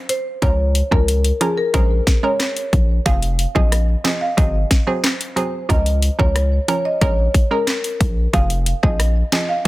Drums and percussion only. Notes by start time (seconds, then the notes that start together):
0.09 closed hi-hat
0.42 kick, closed hi-hat
0.75 closed hi-hat
0.92 kick
1.08 closed hi-hat
1.25 closed hi-hat
1.41 closed hi-hat
1.74 kick, closed hi-hat
2.07 kick, snare, closed hi-hat
2.40 cross-stick, snare, clap, closed hi-hat
2.56 closed hi-hat
2.73 kick, closed hi-hat
3.06 kick, closed hi-hat
3.22 closed hi-hat
3.39 closed hi-hat
3.56 kick
3.72 cross-stick, closed hi-hat
4.05 snare, clap, closed hi-hat
4.38 kick, closed hi-hat
4.71 kick, snare, closed hi-hat
5.04 cross-stick, snare, clap, closed hi-hat
5.21 closed hi-hat
5.37 closed hi-hat
5.70 kick, closed hi-hat
5.86 closed hi-hat
6.02 closed hi-hat
6.19 kick
6.36 cross-stick, closed hi-hat
6.68 closed hi-hat
7.01 kick, closed hi-hat
7.34 kick, closed hi-hat
7.67 cross-stick, snare, clap, closed hi-hat
7.84 closed hi-hat
8.01 kick, closed hi-hat
8.34 kick, closed hi-hat
8.50 closed hi-hat
8.66 closed hi-hat
8.83 kick
9.00 cross-stick, closed hi-hat
9.32 snare, clap, closed hi-hat